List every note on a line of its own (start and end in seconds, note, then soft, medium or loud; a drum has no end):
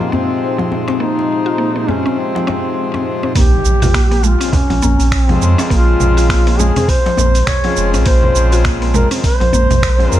0.00 3.32 A#2 medium
0.00 3.32 C3 medium
0.00 0.11 F3 medium
0.00 3.32 F3 medium
0.00 3.32 G#3 medium
0.00 3.33 G#3 medium
0.00 0.14 A#3 medium
0.00 3.33 C4 medium
0.00 3.32 D#4 medium
0.00 3.32 C5 medium
0.12 0.28 A#3 medium
0.12 0.71 C4 medium
0.12 djembe bass medium
0.58 0.86 F3 medium
0.58 djembe tone medium
0.72 djembe tone medium
0.88 0.99 C4 medium
0.88 djembe slap medium
1.00 1.17 A#3 medium
1.00 1.91 D#4 loud
1.19 djembe slap soft
1.46 1.58 F4 medium
1.58 1.74 A#3 medium
1.76 1.88 A#3 medium
1.88 2.05 G#3 medium
1.88 2.20 C#4 medium
1.88 djembe slap soft
1.88 djembe bass medium
2.06 2.33 C4 medium
2.06 djembe tone medium
2.19 3.07 C4 medium
2.35 2.47 F3 medium
2.35 djembe slap medium
2.47 2.64 C4 medium
2.47 djembe slap medium
2.47 djembe tone medium
2.47 djembe bass medium
2.94 3.01 C4 medium
2.94 djembe tone medium
3.23 3.35 C4 medium
3.23 djembe tone medium
3.35 3.60 A#1 medium
3.35 10.20 G#3 medium
3.35 3.52 A#3 medium
3.35 4.27 G4 medium
3.35 8.02 A#5 medium
3.35 kick loud
3.35 open hi-hat medium
3.35 impact medium
3.35 cabasa soft
3.65 4.36 A#1 loud
3.65 cabasa medium
3.82 3.93 F4 medium
3.82 open hi-hat soft
3.82 low conga medium
3.82 cabasa soft
3.94 4.10 A#3 medium
3.94 finger snap loud
3.94 kick loud
3.94 open hi-hat medium
3.94 cabasa soft
4.11 4.23 A#3 medium
4.11 open hi-hat soft
4.23 4.40 G#3 medium
4.23 4.56 F4 medium
4.23 cabasa medium
4.41 4.53 C#3 medium
4.41 4.53 F3 medium
4.41 4.54 G#3 medium
4.41 4.69 C4 medium
4.41 4.54 C4 medium
4.41 open hi-hat soft
4.41 cabasa soft
4.53 5.13 C#4 medium
4.53 kick loud
4.53 open hi-hat medium
4.53 djembe slap medium
4.53 low conga medium
4.53 cabasa soft
4.70 4.81 A#1 medium
4.70 4.82 F3 medium
4.70 open hi-hat soft
4.70 djembe tone medium
4.82 4.97 A#1 loud
4.82 4.99 A#3 medium
4.82 djembe bass medium
4.82 cabasa medium
5.00 5.38 A#1 medium
5.00 open hi-hat soft
5.00 cabasa soft
5.12 5.24 C#4 medium
5.12 finger snap loud
5.12 kick loud
5.12 open hi-hat medium
5.12 cabasa soft
5.24 6.71 C#3 loud
5.24 5.59 C4 medium
5.29 6.72 F3 loud
5.29 5.57 F3 medium
5.29 6.73 G#3 medium
5.29 6.73 C4 loud
5.29 open hi-hat soft
5.29 djembe tone medium
5.29 low conga medium
5.42 5.56 F2 loud
5.42 djembe tone medium
5.42 cabasa medium
5.58 5.70 C4 medium
5.58 open hi-hat soft
5.58 djembe slap medium
5.58 cabasa soft
5.70 5.96 A#1 loud
5.70 5.87 A#3 medium
5.70 6.61 F4 loud
5.70 kick loud
5.70 open hi-hat medium
5.70 cabasa soft
6.00 6.71 A#1 loud
6.00 low conga medium
6.00 cabasa medium
6.17 6.28 F4 medium
6.17 open hi-hat soft
6.17 cabasa soft
6.29 6.46 A#3 medium
6.29 finger snap loud
6.29 kick loud
6.29 open hi-hat medium
6.29 cabasa soft
6.47 6.59 A#3 medium
6.47 open hi-hat soft
6.59 6.76 G#3 medium
6.59 6.91 G#4 loud
6.59 djembe slap soft
6.59 djembe bass medium
6.59 cabasa medium
6.76 6.88 C#3 medium
6.76 6.89 F3 medium
6.76 6.89 G#3 medium
6.76 7.04 C4 medium
6.76 6.89 C4 medium
6.76 open hi-hat soft
6.76 low conga medium
6.76 cabasa soft
6.88 7.50 C5 loud
6.88 kick loud
6.88 open hi-hat medium
6.88 cabasa soft
7.06 7.18 F3 medium
7.06 open hi-hat soft
7.06 djembe slap medium
7.17 7.43 A#1 medium
7.17 7.34 A#3 medium
7.17 djembe slap medium
7.17 djembe tone medium
7.17 djembe bass medium
7.17 cabasa medium
7.35 open hi-hat soft
7.35 cabasa soft
7.47 7.94 C#5 loud
7.47 finger snap loud
7.47 kick loud
7.47 open hi-hat medium
7.47 low conga medium
7.47 cabasa soft
7.62 9.06 C#3 loud
7.62 9.07 F3 loud
7.62 7.92 F3 medium
7.62 9.08 G#3 medium
7.62 9.08 C4 loud
7.62 open hi-hat soft
7.62 djembe tone medium
7.77 7.96 F1 medium
7.77 cabasa medium
7.94 8.04 A#1 medium
7.94 8.05 C4 medium
7.94 open hi-hat soft
7.94 djembe tone medium
7.94 cabasa soft
8.06 8.31 A#1 loud
8.06 8.23 A#3 medium
8.06 8.64 C5 loud
8.06 10.20 A#5 medium
8.06 kick loud
8.06 open hi-hat medium
8.06 cabasa soft
8.23 low conga medium
8.35 9.06 A#1 loud
8.35 cabasa medium
8.52 8.64 F4 medium
8.52 open hi-hat soft
8.52 cabasa soft
8.64 8.81 A#3 medium
8.64 finger snap loud
8.64 kick loud
8.64 open hi-hat medium
8.64 cabasa soft
8.82 8.94 A#3 medium
8.82 open hi-hat soft
8.94 9.11 G#3 medium
8.94 9.08 A#4 loud
8.94 low conga medium
8.94 cabasa medium
9.11 9.23 C#3 medium
9.11 9.24 F3 medium
9.11 9.24 G#3 medium
9.11 9.39 C4 medium
9.11 9.24 C4 medium
9.11 open hi-hat soft
9.11 cabasa soft
9.24 10.14 C5 loud
9.24 kick loud
9.24 open hi-hat medium
9.24 djembe slap medium
9.24 cabasa soft
9.40 9.51 A#1 medium
9.40 9.53 F3 medium
9.40 open hi-hat soft
9.40 djembe tone medium
9.53 9.67 A#1 loud
9.53 9.69 A#3 medium
9.53 djembe bass medium
9.53 cabasa medium
9.70 10.08 A#1 medium
9.70 open hi-hat soft
9.70 low conga medium
9.70 cabasa soft
9.83 finger snap loud
9.83 kick loud
9.83 open hi-hat medium
9.83 cabasa soft
9.97 10.20 C#3 loud
9.97 10.20 F3 medium
9.97 10.20 G#3 loud
9.97 open hi-hat soft
9.97 djembe tone medium
10.01 10.20 C4 loud
10.12 10.20 F2 loud
10.12 10.20 A#4 loud
10.12 djembe tone medium
10.12 cabasa medium